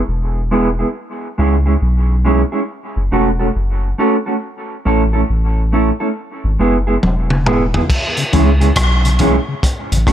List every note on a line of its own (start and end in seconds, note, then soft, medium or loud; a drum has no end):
0.08 0.84 E1 medium
0.51 0.67 G#3 medium
0.51 0.67 B3 medium
0.51 0.68 E4 medium
0.51 0.68 G#4 medium
0.79 0.87 G#3 soft
0.79 0.86 B3 soft
0.79 0.86 E4 soft
0.79 0.86 G#4 soft
1.38 1.76 C#2 medium
1.38 1.54 G#3 medium
1.38 1.54 C#4 medium
1.38 1.55 E4 medium
1.38 1.55 G#4 loud
1.66 1.74 G#3 soft
1.66 1.73 C#4 soft
1.66 1.73 E4 medium
1.66 1.73 G#4 medium
1.82 2.44 B1 loud
2.25 2.41 G#3 medium
2.25 2.41 C#4 medium
2.25 2.41 E4 medium
2.25 2.41 G#4 medium
2.52 2.60 G#3 medium
2.52 2.60 C#4 medium
2.52 2.60 E4 medium
2.52 2.59 G#4 medium
2.96 3.10 F#1 medium
3.12 3.50 E1 medium
3.12 3.28 A3 medium
3.12 3.28 C#4 medium
3.12 3.28 F#4 medium
3.12 3.29 A4 medium
3.39 3.47 A3 soft
3.39 3.47 C#4 medium
3.39 3.47 F#4 medium
3.39 3.47 A4 medium
3.56 3.94 F#1 medium
3.98 4.14 A3 medium
3.98 4.15 C#4 medium
3.98 4.15 F#4 medium
3.98 4.15 A4 medium
4.26 4.34 A3 soft
4.26 4.34 C#4 soft
4.26 4.34 F#4 soft
4.26 4.33 A4 soft
4.85 5.24 A1 loud
4.85 5.01 A3 medium
4.85 5.02 C#4 medium
4.85 5.02 E4 medium
4.85 5.02 A4 medium
5.13 5.21 A3 soft
5.13 5.21 C#4 medium
5.13 5.20 E4 soft
5.13 5.20 A4 medium
5.30 5.92 A1 medium
5.72 5.88 A3 medium
5.72 5.89 C#4 medium
5.72 5.89 E4 medium
5.72 5.89 A4 medium
6.00 6.08 A3 soft
6.00 6.08 C#4 soft
6.00 6.07 E4 medium
6.00 6.07 A4 medium
6.44 6.58 G#1 medium
6.59 6.98 F#1 medium
6.59 6.75 G#3 medium
6.59 6.76 B3 medium
6.59 6.76 E4 medium
6.59 6.76 G#4 medium
6.87 6.95 G#3 soft
6.87 6.95 B3 soft
6.87 6.94 E4 medium
6.87 6.94 G#4 medium
7.03 7.79 E1 medium
7.03 high tom medium
7.30 mid tom medium
7.46 7.62 G#3 medium
7.46 7.62 B3 medium
7.46 7.63 E4 medium
7.46 7.63 G#4 medium
7.46 mid tom medium
7.74 7.82 G#3 soft
7.74 7.82 B3 soft
7.74 7.81 E4 soft
7.74 7.81 G#4 soft
7.74 floor tom medium
7.90 kick loud
7.90 crash medium
8.17 8.24 C#3 medium
8.17 closed hi-hat medium
8.33 8.72 C#2 loud
8.33 8.45 E3 medium
8.33 8.49 G#3 medium
8.33 8.45 G#3 medium
8.33 8.45 C#4 medium
8.33 8.49 C#4 medium
8.33 8.49 E4 medium
8.33 8.50 G#4 medium
8.33 kick medium
8.33 closed hi-hat medium
8.60 8.68 C#3 medium
8.60 8.68 G#3 soft
8.60 8.68 C#4 medium
8.60 8.68 E4 medium
8.60 8.68 G#4 medium
8.60 closed hi-hat soft
8.76 9.39 B1 loud
8.76 kick loud
8.76 cross-stick loud
8.76 closed hi-hat loud
9.05 9.11 C#3 medium
9.05 closed hi-hat medium
9.19 9.32 E3 medium
9.19 9.36 G#3 medium
9.19 9.32 G#3 medium
9.19 9.36 C#4 loud
9.19 9.32 C#4 medium
9.19 9.36 E4 medium
9.19 9.36 G#4 medium
9.19 kick medium
9.19 closed hi-hat medium
9.48 9.55 C#3 medium
9.63 kick loud
9.63 closed hi-hat medium
9.92 10.05 A1 loud
9.92 9.98 F#2 medium
9.92 9.98 C#3 medium
9.92 closed hi-hat medium
10.07 10.12 F#1 medium
10.07 10.12 F#3 medium
10.07 10.12 A3 medium
10.07 10.12 C#4 medium
10.07 10.12 F#4 medium
10.07 10.12 A4 medium
10.07 kick loud
10.07 cross-stick medium
10.07 closed hi-hat medium